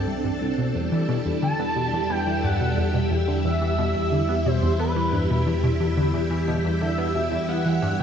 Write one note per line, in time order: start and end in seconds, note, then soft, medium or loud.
0.00 0.72 C2 medium
0.00 0.75 C4 medium
0.00 2.88 D4 medium
0.00 2.88 A4 medium
0.00 2.45 D5 medium
0.00 2.44 A5 medium
0.08 0.13 C2 medium
0.24 0.30 G2 medium
0.41 0.51 C2 medium
0.58 0.72 B2 medium
0.75 8.03 E2 medium
0.75 0.89 E2 medium
0.75 8.03 G3 medium
0.85 8.03 E4 medium
0.92 1.06 E3 medium
1.09 1.18 B2 loud
1.26 1.31 E2 medium
1.42 1.52 D3 medium
1.42 2.11 A5 loud
1.60 1.69 B3 medium
1.72 1.90 B2 medium
1.72 8.03 G4 medium
1.93 1.99 E2 loud
2.10 2.24 B3 medium
2.10 2.45 G5 loud
2.26 2.41 E3 medium
2.26 8.03 E5 medium
2.44 2.58 G2 loud
2.44 3.11 F#5 medium
2.61 2.75 B2 medium
2.77 2.83 E2 medium
2.94 3.00 B2 medium
3.11 3.21 E2 medium
3.28 3.42 D3 medium
3.44 3.59 E2 medium
3.44 4.47 E5 loud
3.62 3.76 E3 medium
3.78 3.88 B2 loud
3.95 4.01 E2 medium
4.12 4.22 D3 medium
4.29 4.38 B3 medium
4.46 4.60 B2 medium
4.46 4.79 C5 loud
4.63 4.68 E2 loud
4.79 4.94 B3 medium
4.79 5.77 B4 medium
4.96 5.11 E3 medium
5.13 5.27 G2 loud
5.30 5.44 B2 medium
5.47 5.53 E2 medium
5.63 5.69 B2 medium
5.80 5.90 E2 medium
5.97 6.12 D3 medium
6.14 6.28 E2 medium
6.31 6.45 E3 medium
6.48 6.57 B2 loud
6.64 6.70 E2 medium
6.81 6.91 D3 medium
6.81 7.50 E5 loud
6.98 7.08 B3 medium
7.15 7.30 B2 medium
7.32 7.38 E2 loud
7.49 7.63 B3 medium
7.49 8.01 F#5 loud
7.66 7.80 E3 medium
7.82 7.97 G2 loud
7.99 8.03 B2 medium
7.99 8.03 G5 loud